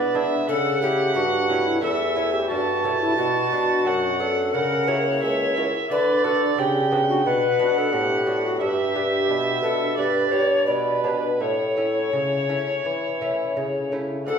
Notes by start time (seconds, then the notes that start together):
Already playing: G#3 B3 D4 E4 B4 D5
0.14 G#3 D4 E4 E5
0.48 C#3 A4 F#5
0.82 A3 C#4 E4 G4
1.15 G2 F#4
1.49 A3 C#4 E4
1.67 E4
1.82 E2 A4 E5
2.16 A3 C#4 E4
2.33 G4
2.48 G2 F#4 A5
2.84 A3 C#4 E4
3.01 E4
3.17 B2 F#4
3.52 B3 D4
3.85 F#2 F#5
4.20 B3 D4 A4
4.54 C#3 A#4 F#5
4.87 A#3 E4 F#4 C#5
5.23 C#2 E5
5.56 A#3 E4 F#4
5.90 D3 B4 D5
6.24 B3 D4 F#4 A4
6.58 C#3 G4 G5
6.92 B3 D4 F#4
7.09 F#4
7.25 B2 B4 F#5
7.59 B3 D4 F#4
7.78 A4
7.92 A2 G4
8.26 B3 D4 F#4
8.46 F#4
8.60 G2 G4 E5
8.95 B3 D4 G4
9.29 B2
9.63 B3 D4 G4 A4
9.97 G2 B4 D5
10.32 B3 D4 G4 C#5
10.67 B2 B4 D5
11.04 B3 D4 G4 C#5
11.09 B4
11.40 A2 C#5
11.77 A3 C#4 E4
12.12 C#3
12.49 A3 C#4 E4
12.85 E3
13.21 A3 C#4 E4
13.56 C#3
13.92 A3 C#4 E4
14.26 D2 A4 F#5